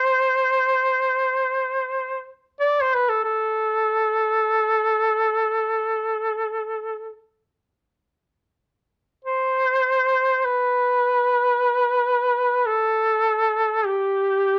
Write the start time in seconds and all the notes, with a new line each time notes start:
Already playing: C5
2.60 D5
2.81 C5
2.96 B4
3.09 A4
3.25 A4
9.25 C5
10.45 B4
12.66 A4
13.86 G4